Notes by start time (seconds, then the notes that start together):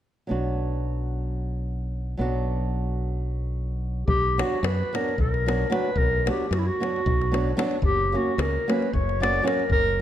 0.27 B1 F#3 B3 D4
0.31 F#4
2.17 B1 F#3 B3 D4 F#4
4.08 B1 G4, davul low
4.38 F#3 B3 D4 F#4, davul high
4.63 F#2 B4, davul high
4.93 F#3 B3 D4 F#4 A#4, davul high
5.08 davul high
5.18 B1 A#4, davul low
5.34 davul high
5.46 F#3 B3 D4 F#4, davul high
5.70 F#3 B3 D4 F#4 B4, davul high
5.85 davul high
5.96 B1 A#4, davul low
6.26 F#3 B3 D4 F#4 G4, davul high
6.51 F#2 F#4, davul high
6.58 E4
6.67 F#4
6.80 F#3 B3 D4 F#4, davul high
6.96 davul high
7.06 B1, davul low
7.22 davul high
7.32 F#3 B3 D4 F#4, davul high
7.57 F#3 B3 D4 F#4, davul high
7.71 davul high
7.82 F#1 G4, davul low
8.12 F#3 A#3 C#4 F#4
8.38 C#2 A#4, davul high
8.68 F#3 A#3 C#4 F#4 B4, davul high
8.82 davul high
8.93 F#1 C#5, davul low
9.09 davul high
9.20 F#3 A#3 C#4 F#4 D5, davul high
9.42 F#3 A#3 C#4 F#4 A#4
9.48 davul high
9.59 davul high
9.70 F#1 A#4, davul low
9.87 davul high